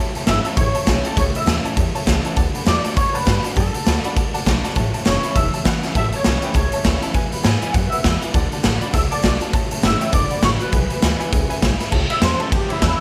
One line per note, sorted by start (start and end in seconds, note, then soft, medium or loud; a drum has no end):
0.00 0.13 A1 medium
0.00 0.55 A2 medium
0.15 0.23 C#5 medium
0.15 0.23 E5 medium
0.15 0.23 A5 medium
0.15 closed hi-hat medium
0.27 0.44 G1 medium
0.27 0.44 E3 loud
0.27 0.44 A3 medium
0.27 0.45 C#4 loud
0.27 0.43 E4 loud
0.27 0.38 C#5 medium
0.27 0.56 E5 loud
0.27 0.39 E5 medium
0.27 0.39 A5 medium
0.27 snare loud
0.27 closed hi-hat medium
0.44 0.58 C#4 medium
0.44 0.56 E4 medium
0.44 0.53 C#5 loud
0.44 0.53 E5 medium
0.44 0.53 A5 loud
0.44 muted upright bass stroke medium
0.44 closed hi-hat medium
0.57 0.74 A1 medium
0.57 1.06 C#5 medium
0.57 0.68 C#5 medium
0.57 0.68 E5 medium
0.57 0.68 A5 medium
0.57 kick loud
0.57 closed hi-hat medium
0.75 0.82 C#5 loud
0.75 0.82 E5 loud
0.75 0.82 A5 loud
0.75 closed hi-hat medium
0.87 1.04 B1 medium
0.87 1.04 E3 medium
0.87 1.04 A3 medium
0.87 1.05 C#4 loud
0.87 1.02 E4 medium
0.87 0.98 C#5 medium
0.87 0.98 E5 medium
0.87 0.98 A5 medium
0.87 kick medium
0.87 snare loud
0.87 closed hi-hat loud
1.03 1.17 C#4 medium
1.03 1.16 E4 medium
1.03 1.17 A4 medium
1.03 1.12 C#5 medium
1.03 1.12 E5 medium
1.03 1.12 G5 medium
1.03 muted upright bass stroke medium
1.03 closed hi-hat medium
1.16 1.34 C#2 medium
1.16 1.75 A2 medium
1.16 1.27 C#5 loud
1.16 1.23 C#5 loud
1.16 1.28 E5 medium
1.16 1.28 A5 medium
1.16 kick loud
1.16 closed hi-hat medium
1.34 1.42 C#5 medium
1.34 1.42 E5 medium
1.34 1.66 E5 medium
1.34 1.42 B5 medium
1.34 muted upright bass stroke medium
1.34 closed hi-hat medium
1.46 1.64 D#2 medium
1.46 1.64 E3 medium
1.46 1.64 A3 medium
1.46 1.64 C#4 medium
1.46 1.63 E4 medium
1.46 1.58 C#5 medium
1.46 1.58 E5 medium
1.46 1.58 A5 medium
1.46 snare loud
1.46 closed hi-hat loud
1.64 1.77 C#4 medium
1.64 1.76 E4 medium
1.64 1.72 C#5 loud
1.64 1.72 E5 medium
1.64 1.72 A5 loud
1.64 muted upright bass stroke medium
1.64 closed hi-hat medium
1.77 1.94 E2 medium
1.77 2.34 E2 medium
1.77 1.87 C#5 medium
1.77 1.88 E5 medium
1.77 1.87 A5 medium
1.77 kick loud
1.77 closed hi-hat medium
1.95 2.02 C#5 loud
1.95 2.02 E5 loud
1.95 2.02 A5 loud
1.95 closed hi-hat medium
2.06 2.24 C#2 medium
2.06 2.35 E3 medium
2.06 2.36 A3 medium
2.06 2.36 C#4 medium
2.06 2.36 E4 medium
2.06 2.18 C#5 medium
2.06 2.18 E5 medium
2.06 2.18 A5 loud
2.06 kick medium
2.06 snare loud
2.06 closed hi-hat medium
2.25 2.32 C#5 medium
2.25 2.32 E5 medium
2.25 2.32 A5 loud
2.25 muted upright bass stroke medium
2.25 closed hi-hat medium
2.36 2.54 D2 medium
2.36 2.64 D3 medium
2.36 2.47 D5 loud
2.36 2.47 F#5 medium
2.36 2.47 A5 loud
2.36 kick loud
2.36 closed hi-hat medium
2.54 2.62 D5 medium
2.54 2.62 F#5 medium
2.54 2.62 B5 loud
2.54 muted upright bass stroke medium
2.54 closed hi-hat medium
2.65 2.84 E2 medium
2.65 2.95 D3 medium
2.65 2.95 A3 medium
2.65 2.96 D4 medium
2.65 2.96 F#4 medium
2.65 2.77 D5 medium
2.65 2.96 D5 loud
2.65 2.78 A5 medium
2.65 snare loud
2.65 closed hi-hat medium
2.84 2.92 D5 loud
2.84 2.92 F#5 medium
2.84 2.92 A5 loud
2.84 muted upright bass stroke medium
2.84 closed hi-hat medium
2.96 3.13 F#2 medium
2.96 3.54 A2 medium
2.96 3.15 C#5 loud
2.96 3.07 D5 medium
2.96 3.07 F#5 medium
2.96 3.07 A5 medium
2.96 kick loud
2.96 closed hi-hat medium
3.13 3.42 B4 loud
3.13 3.22 D5 loud
3.13 3.22 F#5 loud
3.13 3.22 A5 loud
3.13 muted upright bass stroke soft
3.13 closed hi-hat medium
3.25 3.44 G2 medium
3.25 3.43 D3 medium
3.25 3.43 A3 medium
3.25 3.44 D4 medium
3.25 3.42 F#4 medium
3.25 3.37 D5 medium
3.25 3.37 F#5 medium
3.25 3.37 A5 medium
3.25 kick medium
3.25 snare loud
3.25 closed hi-hat loud
3.43 3.57 D4 medium
3.43 3.55 F#4 medium
3.43 3.51 D5 medium
3.43 3.51 F#5 medium
3.43 3.51 A5 medium
3.43 closed hi-hat medium
3.56 3.74 F#2 medium
3.56 3.85 D3 medium
3.56 4.12 A4 medium
3.56 3.67 D5 medium
3.56 3.67 F#5 medium
3.56 3.67 A5 loud
3.56 kick loud
3.56 closed hi-hat medium
3.74 3.81 D5 medium
3.74 3.81 F#5 medium
3.74 3.81 A5 medium
3.74 muted upright bass stroke medium
3.74 closed hi-hat medium
3.86 4.04 D2 medium
3.86 4.03 D3 medium
3.86 4.03 A3 medium
3.86 4.04 D4 medium
3.86 4.02 F#4 medium
3.86 3.97 D5 medium
3.86 3.97 F#5 medium
3.86 3.97 B5 medium
3.86 snare loud
3.86 closed hi-hat medium
4.04 4.17 D4 soft
4.04 4.16 F#4 medium
4.04 4.11 D5 loud
4.04 4.11 F#5 loud
4.04 4.12 B5 loud
4.04 closed hi-hat medium
4.16 4.33 C#2 medium
4.16 4.74 A2 medium
4.16 4.27 D5 medium
4.16 4.27 F#5 medium
4.16 4.27 A5 loud
4.16 kick loud
4.16 closed hi-hat medium
4.34 4.41 D5 loud
4.34 4.41 F#5 loud
4.34 4.41 A5 loud
4.34 closed hi-hat medium
4.45 4.63 B1 medium
4.45 4.63 D3 medium
4.45 4.63 A3 medium
4.45 4.64 D4 medium
4.45 4.62 F#4 medium
4.45 4.57 D5 medium
4.45 4.57 F#5 medium
4.45 4.57 A5 loud
4.45 kick medium
4.45 snare loud
4.45 closed hi-hat medium
4.63 4.76 D4 soft
4.63 4.75 F#4 medium
4.63 4.71 D5 medium
4.63 4.71 F#5 medium
4.63 4.71 A5 loud
4.63 muted upright bass stroke medium
4.63 snare soft
4.63 closed hi-hat medium
4.75 4.93 A1 medium
4.75 5.33 A2 medium
4.75 4.87 C#5 loud
4.75 4.87 E5 medium
4.75 4.87 A5 loud
4.75 kick loud
4.75 closed hi-hat medium
4.93 5.01 C#5 medium
4.93 5.01 E5 medium
4.93 5.01 A5 loud
4.93 muted upright bass stroke medium
4.93 closed hi-hat medium
5.05 5.23 F#1 medium
5.05 5.22 E3 medium
5.05 5.23 A3 medium
5.05 5.23 C#4 medium
5.05 5.22 E4 medium
5.05 5.36 C#5 medium
5.05 5.17 C#5 medium
5.05 5.17 E5 medium
5.05 5.17 A5 medium
5.05 snare loud
5.05 closed hi-hat medium
5.23 5.36 C#4 medium
5.23 5.35 E4 medium
5.23 5.31 C#5 loud
5.23 5.31 E5 medium
5.23 5.31 B5 loud
5.23 closed hi-hat medium
5.36 5.53 E1 medium
5.36 5.93 E2 medium
5.36 5.46 C#5 medium
5.36 5.66 E5 loud
5.36 5.46 E5 medium
5.36 5.47 A5 medium
5.36 kick loud
5.36 closed hi-hat medium
5.54 5.61 C#5 loud
5.54 5.61 E5 medium
5.54 5.61 A5 loud
5.54 closed hi-hat medium
5.65 5.82 E3 medium
5.65 5.83 A3 medium
5.65 5.83 C#4 loud
5.65 5.82 E4 loud
5.65 5.76 C#5 medium
5.65 5.76 E5 medium
5.65 5.97 F#5 loud
5.65 5.76 B5 medium
5.65 kick medium
5.65 snare loud
5.65 closed hi-hat medium
5.83 5.96 C#4 medium
5.83 5.95 E4 medium
5.83 5.90 C#5 medium
5.83 5.90 E5 medium
5.83 5.90 A5 medium
5.83 muted upright bass stroke soft
5.83 snare soft
5.83 closed hi-hat medium
5.95 6.12 A1 medium
5.95 6.53 A2 medium
5.95 6.06 C#5 medium
5.95 6.06 E5 medium
5.95 6.14 E5 loud
5.95 6.06 A5 loud
5.95 kick loud
5.95 closed hi-hat medium
6.12 6.20 C#5 medium
6.12 6.44 C#5 medium
6.12 6.20 E5 medium
6.12 6.20 A5 medium
6.12 muted upright bass stroke medium
6.12 closed hi-hat medium
6.24 6.42 B1 medium
6.24 6.54 E3 medium
6.24 6.54 A3 medium
6.24 6.55 C#4 medium
6.24 6.55 E4 medium
6.24 6.36 C#5 medium
6.24 6.36 E5 medium
6.24 6.36 A5 medium
6.24 snare loud
6.24 closed hi-hat medium
6.42 6.49 B4 medium
6.42 6.50 C#5 medium
6.42 6.50 E5 medium
6.42 6.50 G5 loud
6.42 muted upright bass stroke medium
6.42 closed hi-hat medium
6.54 6.72 C#2 medium
6.54 7.12 E2 medium
6.54 6.66 C#5 medium
6.54 7.00 C#5 medium
6.54 6.66 E5 medium
6.54 6.66 A5 medium
6.54 kick loud
6.54 closed hi-hat loud
6.72 6.80 C#5 loud
6.72 6.80 E5 loud
6.72 6.80 A5 loud
6.72 muted upright bass stroke medium
6.72 closed hi-hat medium
6.84 7.02 D2 medium
6.84 7.01 E3 medium
6.84 7.02 A3 medium
6.84 7.02 C#4 medium
6.84 7.01 E4 loud
6.84 6.95 C#5 medium
6.84 6.95 E5 medium
6.84 6.96 A5 medium
6.84 kick medium
6.84 snare loud
6.84 closed hi-hat medium
7.02 7.15 C#4 soft
7.02 7.14 E4 medium
7.02 7.10 C#5 medium
7.02 7.10 E5 medium
7.02 7.10 A5 loud
7.02 muted upright bass stroke medium
7.02 closed hi-hat medium
7.14 7.72 E2 medium
7.14 7.31 E2 medium
7.14 7.25 B4 loud
7.14 7.25 E5 medium
7.14 7.25 G#5 loud
7.14 kick medium
7.14 closed hi-hat medium
7.32 7.40 B4 medium
7.32 7.40 E5 medium
7.32 7.40 B5 loud
7.32 muted upright bass stroke soft
7.32 closed hi-hat medium
7.43 7.62 G#2 medium
7.43 7.61 E3 medium
7.43 7.61 G#3 medium
7.43 7.62 B3 medium
7.43 7.61 E4 loud
7.43 7.55 B4 medium
7.43 7.55 E5 medium
7.43 7.72 G#5 loud
7.43 7.55 G#5 medium
7.43 snare loud
7.43 closed hi-hat medium
7.62 7.75 B3 medium
7.62 7.74 E4 medium
7.62 7.69 B4 medium
7.62 7.70 E5 medium
7.62 7.70 G#5 loud
7.62 muted upright bass stroke medium
7.62 closed hi-hat medium
7.73 7.91 F#2 medium
7.73 8.31 B2 medium
7.73 7.85 B4 medium
7.73 7.85 E5 medium
7.73 7.89 F#5 loud
7.73 7.85 G#5 medium
7.73 kick loud
7.73 closed hi-hat medium
7.90 7.99 B4 loud
7.90 8.18 E5 medium
7.90 7.99 E5 medium
7.90 8.00 F#5 loud
7.90 muted upright bass stroke medium
7.90 closed hi-hat medium
8.04 8.21 E2 medium
8.04 8.21 E3 medium
8.04 8.22 G#3 medium
8.04 8.22 B3 medium
8.04 8.20 E4 medium
8.04 8.15 B4 medium
8.04 8.15 E5 medium
8.04 8.15 F#5 medium
8.04 kick medium
8.04 snare loud
8.04 closed hi-hat medium
8.21 8.34 B3 soft
8.21 8.33 E4 medium
8.21 8.29 B4 medium
8.21 8.29 E5 medium
8.21 8.29 G#5 medium
8.21 muted upright bass stroke medium
8.21 closed hi-hat medium
8.34 8.51 D2 medium
8.34 8.62 D3 medium
8.34 8.45 D5 loud
8.34 8.45 F#5 medium
8.34 8.45 A5 loud
8.34 kick loud
8.34 closed hi-hat medium
8.52 8.59 D5 medium
8.52 8.59 F#5 medium
8.52 8.60 A5 medium
8.52 closed hi-hat medium
8.63 8.81 A1 medium
8.63 8.81 D3 medium
8.63 8.81 A3 medium
8.63 8.81 D4 medium
8.63 8.80 F#4 medium
8.63 8.75 D5 medium
8.63 8.91 F#5 loud
8.63 8.75 F#5 medium
8.63 8.75 A5 medium
8.63 snare loud
8.63 closed hi-hat medium
8.81 8.94 D4 medium
8.81 8.93 F#4 medium
8.81 8.89 D5 loud
8.81 8.89 F#5 medium
8.81 8.89 B5 loud
8.81 muted upright bass stroke medium
8.81 closed hi-hat medium
8.93 9.11 C#2 medium
8.93 9.51 A2 medium
8.93 9.04 D5 medium
8.93 8.98 E5 loud
8.93 9.04 F#5 medium
8.93 9.04 A5 medium
8.93 kick loud
8.93 closed hi-hat loud
9.11 9.39 D5 medium
9.11 9.19 D5 loud
9.11 9.19 F#5 medium
9.11 9.19 A5 loud
9.11 muted upright bass stroke medium
9.11 closed hi-hat medium
9.22 9.41 B1 medium
9.22 9.40 D3 medium
9.22 9.40 A3 medium
9.22 9.41 D4 medium
9.22 9.39 F#4 loud
9.22 9.34 D5 medium
9.22 9.34 A5 medium
9.22 kick medium
9.22 snare loud
9.22 closed hi-hat medium
9.40 9.53 D4 medium
9.40 9.52 F#4 medium
9.40 9.49 D5 medium
9.40 9.49 F#5 medium
9.40 9.49 A5 medium
9.40 muted upright bass stroke medium
9.40 closed hi-hat medium
9.53 9.70 A1 medium
9.53 10.11 A2 medium
9.53 9.64 C#5 loud
9.53 9.64 E5 medium
9.53 9.64 A5 loud
9.53 kick loud
9.53 closed hi-hat medium
9.71 9.78 C#5 medium
9.71 9.78 E5 medium
9.71 9.79 A5 medium
9.71 muted upright bass stroke soft
9.71 closed hi-hat medium
9.82 10.00 G1 loud
9.82 10.11 E3 medium
9.82 10.12 A3 medium
9.82 10.12 C#4 medium
9.82 10.12 E4 medium
9.82 9.94 C#5 medium
9.82 9.94 E5 medium
9.82 10.12 E5 loud
9.82 9.94 A5 medium
9.82 snare loud
9.82 closed hi-hat medium
10.01 10.08 C#5 loud
10.01 10.08 E5 medium
10.01 10.08 G5 loud
10.01 closed hi-hat medium
10.12 10.30 F#1 medium
10.12 10.40 D3 medium
10.12 10.23 D5 medium
10.12 10.41 D5 medium
10.12 10.24 F#5 medium
10.12 10.24 A5 medium
10.12 kick loud
10.12 closed hi-hat medium
10.30 10.38 D5 loud
10.30 10.38 F#5 loud
10.30 10.38 B5 loud
10.30 muted upright bass stroke medium
10.30 closed hi-hat medium
10.41 10.60 A1 medium
10.41 10.59 D3 medium
10.41 10.60 A3 medium
10.41 10.60 D4 medium
10.41 10.58 F#4 medium
10.41 10.49 C#5 medium
10.41 10.54 B5 medium
10.41 kick medium
10.41 snare loud
10.41 closed hi-hat medium
10.59 10.73 D4 medium
10.59 10.72 F#4 medium
10.59 11.59 B4 medium
10.59 10.68 D5 medium
10.59 10.68 F#5 medium
10.59 10.68 B5 medium
10.59 closed hi-hat medium
10.72 10.90 B1 medium
10.72 11.30 E2 medium
10.72 10.83 B4 medium
10.72 10.83 E5 medium
10.72 10.83 G#5 medium
10.72 kick loud
10.72 closed hi-hat medium
10.90 10.98 B4 medium
10.90 10.98 E5 medium
10.90 10.98 G#5 medium
10.90 muted upright bass stroke medium
10.90 closed hi-hat medium
11.02 11.20 D2 medium
11.02 11.19 E3 medium
11.02 11.20 G#3 medium
11.02 11.20 B3 medium
11.02 11.18 E4 loud
11.02 11.13 B4 medium
11.02 11.13 E5 medium
11.02 11.13 G#5 loud
11.02 snare loud
11.02 closed hi-hat medium
11.20 11.33 B3 medium
11.20 11.32 E4 medium
11.20 11.27 B4 loud
11.20 11.27 E5 loud
11.20 11.27 G#5 loud
11.20 muted upright bass stroke medium
11.20 closed hi-hat medium
11.32 11.50 C#2 medium
11.32 11.61 F#2 medium
11.32 11.43 B4 medium
11.32 11.43 E5 medium
11.32 11.43 G#5 loud
11.32 kick loud
11.32 closed hi-hat medium
11.49 11.57 B4 loud
11.49 11.57 E5 loud
11.49 11.57 G#5 loud
11.49 muted upright bass stroke medium
11.49 closed hi-hat medium
11.62 11.79 B1 medium
11.62 11.91 G#2 medium
11.62 11.73 B4 loud
11.62 11.73 E5 medium
11.62 11.73 G#5 loud
11.62 kick medium
11.62 snare loud
11.62 closed hi-hat loud
11.79 11.87 B4 medium
11.79 11.87 E5 medium
11.79 11.87 B5 medium
11.79 muted upright bass stroke medium
11.79 snare soft
11.79 closed hi-hat medium
11.92 12.09 C#2 medium
11.92 12.49 A2 medium
11.92 12.03 C#5 loud
11.92 12.02 E5 medium
11.92 12.03 A5 loud
11.92 kick loud
11.92 crash loud
12.09 12.17 C#5 medium
12.09 12.17 E5 medium
12.09 12.21 E5 medium
12.09 12.17 B5 medium
12.09 ride medium
12.21 12.39 E2 medium
12.21 12.39 E3 medium
12.21 12.39 A3 medium
12.21 12.40 C#4 medium
12.21 12.39 E4 medium
12.21 12.39 C5 medium
12.21 12.33 C#5 medium
12.21 12.33 E5 medium
12.21 12.33 A5 medium
12.21 snare loud
12.21 ride medium
12.39 12.53 C#4 soft
12.39 12.52 E4 medium
12.39 12.51 A4 medium
12.39 12.47 C#5 medium
12.39 12.47 E5 medium
12.39 12.47 A5 loud
12.39 muted upright bass stroke medium
12.39 ride medium
12.51 13.00 E2 medium
12.51 12.68 F#2 medium
12.51 12.69 G4 medium
12.51 12.63 C#5 medium
12.51 12.63 E5 medium
12.51 12.63 A5 medium
12.51 kick loud
12.51 ride medium
12.69 12.80 E4 medium
12.69 12.77 C#5 loud
12.69 12.77 E5 medium
12.69 12.77 B5 loud
12.69 muted upright bass stroke soft
12.69 ride medium
12.81 12.99 E2 medium
12.81 12.99 E3 medium
12.81 12.99 A3 medium
12.81 13.00 C#4 medium
12.81 12.99 E4 loud
12.81 12.98 E4 loud
12.81 12.92 C#5 medium
12.81 12.93 E5 medium
12.81 12.92 A5 medium
12.81 kick medium
12.81 snare loud
12.81 ride medium